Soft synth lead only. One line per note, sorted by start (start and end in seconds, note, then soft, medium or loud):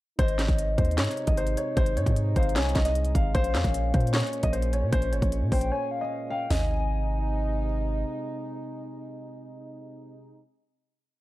0.19 0.94 D#5 loud
2.36 2.55 F5 medium
2.56 2.75 G#5 medium
2.76 2.94 D#5 medium
3.35 4.10 F5 loud
5.52 5.71 G5 medium
5.72 5.90 G#5 medium
5.91 6.28 F5 medium
6.31 6.50 G5 medium
6.50 7.65 G#5 medium